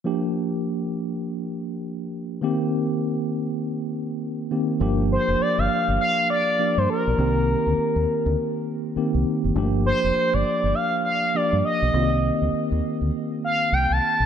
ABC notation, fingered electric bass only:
X:1
M:4/4
L:1/16
Q:"Swing 16ths" 1/4=101
K:Gm
V:1 name="Fingered electric bass" clef=bass
z16 | z16 | G,,,3 F,,, z G,,, z G,,, z4 z G,, z =B,,, | C,,3 D,, z E,, z D,, z4 z C,, z ^F,,, |
G,,,3 F,,, z G,,, z G,,, z4 z G,, z =B,,, | C,,3 D,, z E,, z D,, z4 C,, C,, z B,,, |]